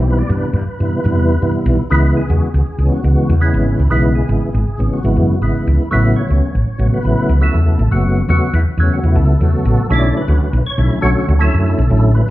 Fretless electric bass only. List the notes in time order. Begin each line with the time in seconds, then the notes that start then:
Already playing: B1
0.29 G2
0.53 G2
0.67 muted fretless electric bass stroke
0.80 G2
1.05 G2
1.17 E2
1.42 G2
1.66 B1
1.91 C#2
2.30 E2
2.54 C#2
2.66 muted fretless electric bass stroke
2.78 C#2
3.04 C#2
3.29 E2
3.54 G#1
3.79 C#2
3.91 B1
4.29 G#1
4.54 G#1
4.67 muted fretless electric bass stroke
4.80 G#1
5.04 G#1
5.16 F#2
5.42 G#1
5.67 C#2
5.93 A1
6.30 C#2
6.55 A1
6.67 muted fretless electric bass stroke
6.79 A1
7.05 A1
7.29 C#2
7.54 E2
7.79 A1
7.91 F#1
8.29 E2
8.53 E2
8.66 muted fretless electric bass stroke
8.77 E2
9.03 E2
9.15 C#2
9.41 E2
9.65 A1
9.90 B1
10.28 D2
10.53 B1
10.65 muted fretless electric bass stroke
10.78 B1
11.03 B1
11.28 D2
11.54 F#2
11.78 B1
11.90 A1